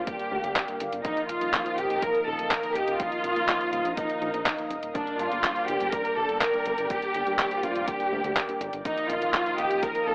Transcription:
Already playing: analog synth pad A#4 D5 F5 D6
0.07 tine electric piano G2 G3 A#3 D4 A#4, violin section G4, kick, closed hi-hat
0.19 closed hi-hat
0.32 analog synth bass D2, tine electric piano G2 G3 A#3 D4 A#4
0.44 analog synth bass D2, closed hi-hat
0.56 kick, clap, closed hi-hat
0.68 tine electric piano G2 G3 A#3 D4 A#4, closed hi-hat
0.80 analog synth bass G1, closed hi-hat
0.93 analog synth bass G1, closed hi-hat
1.05 tine electric piano F3 A#3 D#4 A#4, violin section D#4, analog synth pad D#5 D#6, kick, closed hi-hat
1.17 closed hi-hat
1.29 analog synth bass D#1, violin section F4, closed hi-hat
1.41 analog synth bass D#1, tine electric piano F3 A#3 D#4 A#4, closed hi-hat
1.54 kick, clap, closed hi-hat
1.66 tine electric piano F3 A#3 D#4 C5, closed hi-hat
1.78 analog synth bass D#1, violin section G4, closed hi-hat
1.90 analog synth bass D#1, closed hi-hat
2.02 tine electric piano F3 A#3 D#4 A#4, violin section A#4, kick, closed hi-hat
2.15 closed hi-hat
2.27 analog synth bass D#1, tine electric piano F3 A#3 D#4 A#4, violin section A4
2.39 analog synth bass D#1, closed hi-hat
2.51 violin section A#4, kick, clap, closed hi-hat
2.63 tine electric piano F3 A#3 D#4 A#4, closed hi-hat
2.75 analog synth bass D#1, violin section G4, closed hi-hat
2.88 analog synth bass D#1, closed hi-hat
3.00 tine electric piano F3 A#3 D#4 A#4, violin section F4, kick, closed hi-hat
3.12 closed hi-hat
3.24 analog synth bass D#1, closed hi-hat
3.36 analog synth bass D#1, tine electric piano F3 A#3 D#4 A#4, closed hi-hat
3.49 kick, clap, closed hi-hat
3.61 tine electric piano F3 A#3 D#4 C5, closed hi-hat
3.73 analog synth bass D#1, closed hi-hat
3.85 analog synth bass A#1, closed hi-hat
3.97 tine electric piano F3 A#3 D#4 A#4, violin section D#4, kick, closed hi-hat
4.10 closed hi-hat
4.22 analog synth bass A#1, tine electric piano F3 A#3 D#4 A#4, closed hi-hat
4.34 analog synth bass A#1, closed hi-hat
4.46 kick, clap, closed hi-hat
4.58 tine electric piano F3 A#3 D#4 A#4, closed hi-hat
4.71 analog synth bass D#1, closed hi-hat
4.83 analog synth bass D#1, closed hi-hat
4.95 tine electric piano G2 G3 A#3 D4 A#4, violin section D4, analog synth pad D5 G5 D6, kick, closed hi-hat
5.07 closed hi-hat
5.19 analog synth bass G1, violin section F4, closed hi-hat
5.32 analog synth bass G1, tine electric piano G2 G3 A#3 D4 A#4, closed hi-hat
5.44 kick, clap, closed hi-hat
5.56 tine electric piano G2 G3 A#3 D4 C5, closed hi-hat
5.68 analog synth bass G1, violin section G4, closed hi-hat
5.80 analog synth bass G1, closed hi-hat
5.92 tine electric piano G2 G3 A#3 D4 A#4, violin section A#4, kick, closed hi-hat
6.05 closed hi-hat
6.17 analog synth bass G1, tine electric piano G2 G3 A#3 D4 A#4, violin section A4
6.29 analog synth bass G1, closed hi-hat
6.41 violin section A#4, kick, clap, closed hi-hat
6.54 tine electric piano G2 G3 A#3 D4 A#4, closed hi-hat
6.66 analog synth bass G1, closed hi-hat
6.78 analog synth bass G1, closed hi-hat
6.90 tine electric piano G2 G3 A#3 D4 A#4, violin section G4, kick, closed hi-hat
7.02 closed hi-hat
7.14 analog synth bass G1, closed hi-hat
7.27 analog synth bass G1, tine electric piano G2 G3 A#3 D4 A#4, closed hi-hat
7.39 violin section G4, kick, clap, closed hi-hat
7.51 tine electric piano G2 G3 A#3 D4, closed hi-hat
7.63 analog synth bass G1, violin section F4, closed hi-hat
7.75 analog synth bass F1, closed hi-hat
7.88 tine electric piano G2 G3 A#3 D4 A#4, violin section G4, kick, closed hi-hat
8.00 closed hi-hat
8.12 analog synth bass D2, tine electric piano G2 G3 A#3 D4 A#4
8.24 analog synth bass D2, closed hi-hat
8.36 kick, clap, closed hi-hat
8.49 tine electric piano G2 G3 A#3 D4 A#4, closed hi-hat
8.61 analog synth bass G1, closed hi-hat
8.73 analog synth bass G1, closed hi-hat
8.85 tine electric piano F3 A#3 D#4 A#4, violin section D#4, analog synth pad A#4 D#5 F5 D#6, kick, closed hi-hat
8.97 closed hi-hat
9.10 analog synth bass D#1, violin section F4, closed hi-hat
9.22 analog synth bass D#1, tine electric piano F3 A#3 D#4 A#4, closed hi-hat
9.34 kick, clap, closed hi-hat
9.46 tine electric piano F3 A#3 D#4, closed hi-hat
9.58 analog synth bass D#1, violin section G4, closed hi-hat
9.71 analog synth bass D#1, closed hi-hat
9.83 tine electric piano F3 A#3 D#4 A#4, violin section A#4, kick, closed hi-hat
9.95 closed hi-hat
10.07 analog synth bass D#1, tine electric piano F3 A#3 D#4 A#4, violin section A4

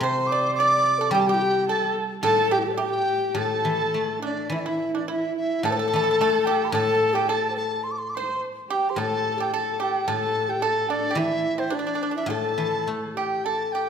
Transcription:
Already playing: guzheng E3
0.00 guzheng C3, pipa C5, dizi C6
0.04 horsehead fiddle C5, xiao C5
0.27 dizi D6
0.31 xiao D5, pipa D5
0.54 xiao D5, dizi D6
0.59 horsehead fiddle D5, pipa D5
0.99 xiao A4, pipa A4
1.11 guzheng G3, xiao G4, horsehead fiddle G4, pipa G4, dizi G5
1.20 dizi A5
1.26 xiao G4, horsehead fiddle G4, pipa G4, dizi G5
1.34 xiao E4
1.42 xiao G4
1.68 pipa A4, horsehead fiddle A4, xiao A4, dizi A5
2.23 guzheng A2, pipa A4, horsehead fiddle A4, xiao A4, dizi A5
2.51 pipa G4, horsehead fiddle G4, xiao G4, dizi G5
2.59 xiao E4, dizi G4
2.64 xiao G4, dizi A4
2.69 dizi C5 D5
2.77 pipa G4, horsehead fiddle G4, dizi E5
2.81 xiao G4, dizi G5
3.35 guzheng A2, pipa A4, horsehead fiddle A4, xiao A4
3.39 dizi A5
3.65 guzheng E3
3.94 guzheng A3
4.22 xiao D4, horsehead fiddle D4, pipa D4, dizi D5
4.50 guzheng E3, xiao E4, horsehead fiddle E4, pipa E4, dizi E5
4.59 dizi D5
4.66 pipa E4, horsehead fiddle E4, xiao E4, dizi E5
4.95 pipa D4, xiao D4, dizi D5
5.08 pipa E4, xiao E4, horsehead fiddle E4, dizi E5
5.37 xiao E4, dizi E5
5.63 guzheng A2, xiao A4, pipa A4, horsehead fiddle A4, dizi A5
5.71 pipa A4, xiao C5
5.77 xiao A4, pipa A4
5.88 pipa A4
5.93 guzheng E3, pipa A4
6.04 pipa A4
6.11 pipa A4
6.21 guzheng A3, pipa A4
6.45 pipa G4, dizi G5
6.64 dizi C6
6.71 guzheng A2, xiao A4, horsehead fiddle A4, pipa A4, dizi A5
7.13 xiao G4, pipa G4, dizi G5
7.27 xiao A4, horsehead fiddle A4, pipa A4, dizi A5
7.50 xiao C5
7.57 xiao A4, dizi A5
7.83 dizi C6
7.91 dizi D6
7.98 dizi C6
8.09 dizi D6
8.15 horsehead fiddle C5, xiao C5, pipa C5, dizi C6
8.69 xiao G4, horsehead fiddle G4, pipa G4, dizi G5
8.89 xiao C5, dizi C6
8.96 guzheng A2, xiao A4, horsehead fiddle A4, pipa A4, dizi A5
9.37 xiao G4, pipa G4 A4
9.42 dizi G5
9.53 xiao A4, pipa A4, horsehead fiddle A4, dizi A5
9.80 pipa G4, xiao G4, dizi G5
10.08 guzheng A2, pipa A4, horsehead fiddle A4, xiao A4, dizi A5
10.48 xiao G4, dizi G5
10.62 pipa A4, xiao A4, horsehead fiddle A4, dizi A5
10.89 xiao D4, pipa D4, dizi D5
11.11 pipa G4
11.15 guzheng E3, xiao E4, pipa E4, horsehead fiddle E4, dizi E5
11.57 pipa C4, xiao C5, dizi C5
11.70 pipa D4, horsehead fiddle D4, xiao D4
11.74 dizi D5
11.79 pipa D4
11.87 pipa D4
11.95 pipa D4
12.03 pipa D4
12.11 pipa D4, xiao E4
12.16 pipa D4, dizi E5
12.26 guzheng A2, xiao A4, pipa A4, horsehead fiddle A4, dizi A5
12.58 guzheng E3
12.87 guzheng A3
13.14 xiao G4, pipa G4, dizi G5
13.45 pipa A4, xiao A4, dizi A5
13.72 pipa G4, dizi G5

